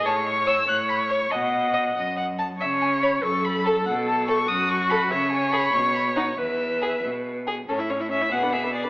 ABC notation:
X:1
M:6/8
L:1/16
Q:3/8=95
K:E
V:1 name="Violin"
a2 c'2 e'2 f'2 b2 c'2 | f6 z6 | e2 g2 b2 c'2 b2 a2 | f2 a2 c'2 d'2 c'2 b2 |
e2 g2 b2 c'2 b2 f2 | e6 z6 | [K:A] A2 c2 e2 f2 e2 d2 |]
V:2 name="Violin"
z4 c z4 z c z | z4 d z d2 f2 a2 | z4 c z4 z A z | z4 A z4 z A z |
z4 G z4 z D z | z4 G z4 z G z | [K:A] c e c e c e G B G B G B |]
V:3 name="Viola"
c6 c6 | d8- d z3 | c6 A6- | A6 F6 |
c12 | B8- B z3 | [K:A] C E C E C E B, D B, D B, D |]
V:4 name="Cello" clef=bass
A,,6 A,,6 | B,,6 F,,6 | C,6 F,,6 | B,,6 F,,6 |
C,6 B,,6 | E,,6 B,,6 | [K:A] A,,6 B,,6 |]